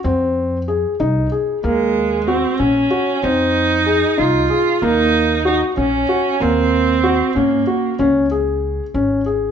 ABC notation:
X:1
M:5/8
L:1/8
Q:1/4=94
K:Ebdor
V:1 name="Felt piano"
C2 A E A | B,2 G D G | C2 A E A | B,2 G D G |
B,2 G D G | D A2 D A |]
V:2 name="Viola"
z4 z | A,2 C D2 | E3 F2 | E2 E D2 |
C3 B,2 | z4 z |]
V:3 name="Upright bass" clef=bass
F,,3 C,, z | E,,3 B,,, z | F,,3 C,, z | E,,3 B,,, z |
E,,3 A,, z | D,,3 A,,,2 |]